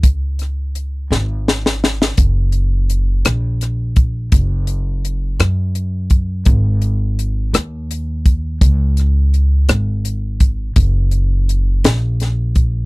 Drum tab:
HH |x-x-x-------|x-x-x-x-x-x-|x-x-x-x-x-x-|x-x-x-x-x-x-|
SD |--r---o-oooo|------r-r---|------r-----|------r-----|
BD |o-----------|o---------o-|o---------o-|o---------o-|

HH |x-x-x-x-x-x-|x-x-x-x-x-x-|
SD |--r---r-----|------o-o---|
BD |o---------o-|o---------o-|